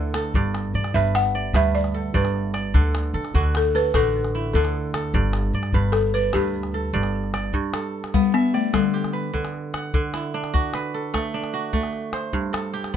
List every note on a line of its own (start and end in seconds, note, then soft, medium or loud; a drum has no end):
0.00 0.31 D2 medium
0.00 0.40 D3 medium
0.00 1.12 E4 medium
0.00 0.41 F#4 medium
0.00 0.15 A4 medium
0.00 0.17 A4 medium
0.14 1.47 A4 medium
0.14 calabash click medium
0.34 0.71 G1 medium
0.34 0.94 G2 medium
0.34 0.74 D5 medium
0.34 calabash thump medium
0.55 calabash click medium
0.74 0.93 G2 medium
0.74 1.34 D5 medium
0.84 calabash click soft
0.94 1.51 G1 medium
0.94 1.54 G2 medium
0.94 1.55 B4 medium
0.94 1.15 E5 medium
0.94 calabash thump medium
1.15 1.56 F#5 loud
1.15 calabash click medium
1.35 2.14 D5 medium
1.53 2.10 D2 medium
1.53 2.13 G2 medium
1.53 2.78 B4 medium
1.53 1.76 E5 loud
1.53 calabash thump medium
1.53 calabash click medium
1.75 2.16 D5 medium
1.84 calabash click soft
1.94 2.74 A4 medium
2.14 2.70 G1 medium
2.14 2.80 G2 medium
2.14 2.57 B4 medium
2.14 2.53 D5 medium
2.14 calabash thump medium
2.25 calabash click soft
2.34 calabash click soft
2.54 3.65 D5 medium
2.54 calabash click medium
2.74 3.11 D2 medium
2.74 3.33 D3 medium
2.74 3.14 A4 medium
2.74 calabash thump medium
2.95 calabash click medium
3.14 3.32 D3 medium
3.14 3.74 A4 medium
3.25 calabash click soft
3.34 3.90 D2 medium
3.34 3.94 D3 medium
3.34 3.94 F#4 medium
3.34 calabash thump medium
3.55 3.76 A4 medium
3.55 calabash click medium
3.75 4.55 A4 medium
3.75 3.84 B4 medium
3.94 4.50 A1 medium
3.94 4.54 D3 medium
3.94 5.20 F#4 medium
3.94 4.50 A4 loud
3.94 calabash thump medium
3.94 calabash click medium
4.25 calabash click soft
4.35 5.92 E4 medium
4.53 5.10 D2 medium
4.53 5.19 D3 medium
4.53 4.96 A4 medium
4.53 4.94 A4 medium
4.53 calabash thump medium
4.65 calabash click soft
4.74 calabash click soft
4.94 6.26 A4 medium
4.94 calabash click medium
5.14 5.51 G1 loud
5.14 5.73 G2 medium
5.14 5.54 D5 medium
5.14 calabash thump medium
5.33 calabash click medium
5.53 5.72 G2 medium
5.53 6.14 D5 medium
5.63 calabash click medium
5.73 6.30 G1 medium
5.73 6.33 G2 medium
5.73 6.34 B4 medium
5.73 calabash thump medium
5.92 6.14 A4 medium
5.92 calabash click medium
6.14 6.35 B4 medium
6.14 6.93 D5 medium
6.33 6.90 D2 medium
6.33 6.92 G2 medium
6.33 7.30 G4 medium
6.33 7.57 B4 medium
6.33 calabash thump medium
6.33 calabash click medium
6.63 calabash click soft
6.74 7.73 A4 medium
6.93 7.50 G1 medium
6.93 7.53 G2 medium
6.93 7.33 D5 medium
6.93 calabash thump medium
7.03 calabash click soft
7.24 calabash click soft
7.34 8.45 D5 medium
7.34 calabash click medium
7.44 calabash click soft
7.53 9.88 G2 medium
7.53 calabash thump medium
7.74 9.06 A4 medium
7.74 calabash click medium
8.04 calabash click medium
8.14 8.35 G3 medium
8.14 10.00 B3 medium
8.14 calabash thump medium
8.34 8.54 B3 medium
8.34 9.38 E5 medium
8.54 8.63 A3 medium
8.54 9.65 D5 medium
8.74 9.32 D3 medium
8.74 9.15 G3 medium
8.74 calabash thump medium
8.74 calabash click medium
8.94 9.80 G4 medium
9.04 calabash click soft
9.13 10.36 B4 medium
9.33 9.93 D3 medium
9.33 calabash thump medium
9.45 calabash click medium
9.54 calabash click soft
9.74 10.70 F#5 medium
9.74 calabash click medium
9.94 12.28 D3 medium
9.94 calabash thump medium
10.13 11.70 E4 medium
10.13 calabash click medium
10.34 11.34 D4 medium
10.44 calabash click soft
10.54 11.53 F#4 medium
10.54 calabash thump medium
10.74 11.97 B4 medium
10.74 calabash click medium
10.94 12.26 A4 medium
11.14 11.73 A3 medium
11.14 calabash thump medium
11.14 calabash click medium
11.34 12.96 D4 medium
11.44 calabash click soft
11.54 12.39 F#4 medium
11.73 12.96 A3 medium
11.73 calabash thump soft
11.83 calabash click soft
11.93 calabash click soft
12.13 12.96 C5 medium
12.13 calabash click medium
12.33 12.96 G2 medium
12.33 calabash thump medium
12.53 12.96 A4 medium
12.53 calabash click medium
12.73 12.96 G4 medium
12.84 calabash click medium